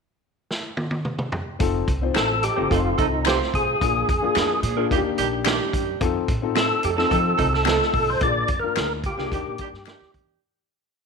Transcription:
0.51 snare
0.77 high tom
0.91 high tom
1.05 mid tom
1.19 mid tom
1.32 floor tom
1.59 F1 C4 D#4 F4 A4, kick, closed hi-hat
1.88 C2, kick, closed hi-hat
2.01 C4 D#4 F4 C5
2.14 A1 D#4 A4 C5, finger snap, snare, closed hi-hat
2.42 F3 A3 D#4 G4 A4, closed hi-hat
2.56 G1 C4 D#4 F4 A4 C5
2.70 F1 F3 A3 C4 D#4 F4 A4, kick, closed hi-hat
2.98 C2 F3 A3 D#4 A4, kick, closed hi-hat
3.25 A3 C4 D#4 F4 G4 A4 C5, finger snap, snare, closed hi-hat
3.42 snare
3.54 B1 G#4, kick, closed hi-hat
3.80 A#1 A#3 D4 F4 G#4, kick, closed hi-hat
4.09 F2, kick, closed hi-hat
4.22 A#3 D4 F4 G#4
4.35 F2 D4 G#4 A#4, finger snap, snare, closed hi-hat
4.63 A#2 F3 G#3 D4 G#4, closed hi-hat
4.76 A#3 D4 F4 G#4 A#4
4.90 D#2 D#3 G3 A#3 D4 D#4 F4 G4, kick, closed hi-hat
4.98 G4
5.17 A#1 D#3 G3 D4 G4, closed hi-hat
5.44 D#3 G3 D4 G4 A#4, finger snap, snare, closed hi-hat
5.73 F#2, kick, closed hi-hat
6.00 F2 C4 D#4 F4 A4, kick, closed hi-hat
6.28 A2, kick, closed hi-hat
6.42 C4 D#4 F4 A4
6.55 C4 D#4 A4, finger snap, snare, closed hi-hat
6.82 F2 F3 A3 D#4 G4 A4, closed hi-hat
6.97 C4 D#4 F4 A4, snare
7.09 F3 A3 C4 D#4 F4 A4, kick, closed hi-hat
7.38 C2 F3 A3 D#4 A4, kick, closed hi-hat
7.54 A4, snare
7.65 F3 A3 C4 D#4 A4, finger snap, snare, closed hi-hat
7.82 snare
7.93 B1, kick, open hi-hat
8.10 C5
8.21 A#1 A#3 D4 F4 G#4 D5, kick, closed hi-hat
8.48 F2, kick, closed hi-hat
8.59 A#3 D4 F4 A#4
8.64 A#4
8.76 D2 D4 G#4 A#4, finger snap, snare, closed hi-hat
9.04 D3 F3 A#3 F4 G4, kick, closed hi-hat
9.17 C2 A#3 D4 F4 G#4 A#4, snare
9.31 D#2 D#3 G3 A#3 D4 D#4 G4, kick, closed hi-hat
9.46 A#2
9.58 D#3 G3 D4 G4, kick, closed hi-hat
9.73 G2, snare
9.85 D#3 G3 D4 G4 A#4, finger snap, snare, closed hi-hat
10.01 D#2, snare
10.14 E2, kick, closed hi-hat

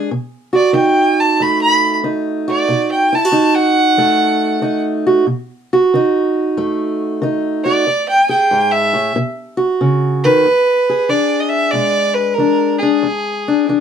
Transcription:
0.11 B2
0.53 F#4 D5
0.73 D#3 D#4 G5
1.20 A5
1.40 F#2 A3 B5
1.61 B5
2.04 D#3 D#4
2.48 F#4 D5
2.69 B2
2.91 G5
3.13 E4 A5
3.25 F#4
3.32 D#3 D#4
3.55 F#5
3.97 F#2 A3
4.62 D#3 D#4
5.07 F#4
5.27 B2
5.73 F#4
5.94 D#3 D#4
6.57 F#2 A3
7.22 D#3 D#4
7.64 F#4 D5
7.87 E2
8.09 G5
8.29 G#4 G5
8.51 G#2
8.71 E5
8.93 A2
9.16 B2
9.57 F#4
9.81 C#3
10.24 D#3 B4
10.45 E2
10.89 G#4
11.09 E3 D4 D5
11.40 D#5
11.49 E5
11.71 B2 G#3 D5
12.14 B4
12.34 E3 A#4
12.39 D4
12.78 G#4
12.83 D4
13.03 E2
13.48 D4
13.69 E3 D4

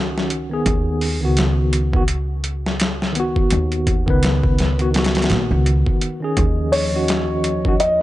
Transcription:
Already playing: C#2 D#3 C#4 F#4
0.18 snare
0.30 closed hi-hat
0.49 D#3 B3
0.54 G#4
0.66 D#2, kick, closed hi-hat
1.01 open hi-hat
1.21 C#2 D#3 B3 F#4
1.37 snare, closed hi-hat
1.73 closed hi-hat
1.92 D#3 B3, kick
1.96 F#4
2.08 closed hi-hat
2.44 closed hi-hat
2.66 snare
2.80 snare, closed hi-hat
3.02 snare
3.12 D#3 B3, closed hi-hat
3.20 F#4
3.36 kick
3.50 D#2, closed hi-hat
3.72 closed hi-hat
3.87 kick, closed hi-hat
4.06 C#2 D#3 B3, kick
4.10 B4
4.23 snare, closed hi-hat
4.44 kick
4.59 snare, closed hi-hat
4.78 D#3 B3 F#4, closed hi-hat
4.91 D#3, closed hi-hat
4.95 B3 F#4, snare
5.04 snare, closed hi-hat
5.15 snare, closed hi-hat
5.22 snare, closed hi-hat
5.30 A#1, snare, closed hi-hat
5.51 C#2
5.66 closed hi-hat
5.86 kick
6.01 closed hi-hat
6.20 D#3 C#4 G#4
6.36 D#2 F3 D#5, kick, closed hi-hat
6.72 C#5, open hi-hat
6.92 D#3 C#4 F#4
7.08 snare, closed hi-hat
7.44 closed hi-hat
7.64 D#3 C#4 F#4, kick
7.80 D#5, closed hi-hat

